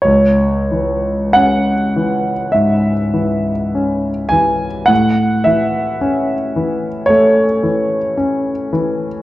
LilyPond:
<<
  \new Staff \with { instrumentName = "Grand piano" } { \time 4/4 \key cis \minor \tempo 4 = 52 cis''4 fis''4 e''4. gis''8 | fis''8 e''4. cis''4. r8 | }
  \new Staff \with { instrumentName = "Grand piano" } { \clef bass \time 4/4 \key cis \minor cis,8 e8 cis'8 e8 gis,8 e8 cis'8 e8 | a,8 e8 cis'8 e8 a8 e8 cis'8 e8 | }
>>